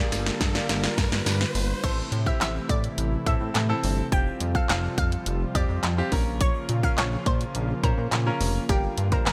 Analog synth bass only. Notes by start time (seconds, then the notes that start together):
0.12 G1
0.41 G2
0.69 G1
0.98 G2
1.12 G2
1.26 G2
1.55 G1
1.84 A1
2.12 A2
2.41 A1
2.69 A2
2.98 A1
3.26 A2
3.41 A2
3.55 A2
3.84 G1
4.12 F1
4.41 F2
4.69 F1
4.98 F2
5.26 F1
5.55 F2
5.69 F2
5.84 F2
6.12 A#1
6.69 A#2
6.98 A#1
7.26 A#2
7.55 A#1
7.83 A#2
7.98 A#2
8.12 A#2
8.41 F1
8.69 G1
8.98 G2
9.26 G1